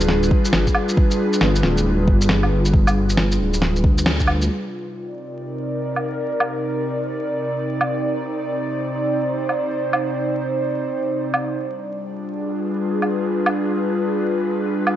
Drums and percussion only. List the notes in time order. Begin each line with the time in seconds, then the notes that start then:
0.01 shaker
0.08 snare
0.23 shaker
0.31 kick
0.45 shaker
0.53 snare
0.67 kick, shaker
0.75 low woodblock
0.89 shaker
0.97 kick
1.11 shaker
1.33 shaker
1.41 snare
1.55 shaker
1.63 snare
1.77 shaker
2.08 kick
2.21 shaker
2.29 snare
2.43 low woodblock
2.65 shaker
2.74 kick
2.87 low woodblock, shaker
3.09 shaker
3.17 snare
3.32 shaker
3.53 shaker
3.62 snare
3.76 shaker
3.84 kick
3.98 shaker
4.06 snare
4.20 kick, shaker
4.28 low woodblock
4.42 shaker
5.96 low woodblock
6.40 low woodblock
7.81 low woodblock
9.49 low woodblock
9.93 low woodblock
11.34 low woodblock
13.02 low woodblock
13.46 low woodblock
14.87 low woodblock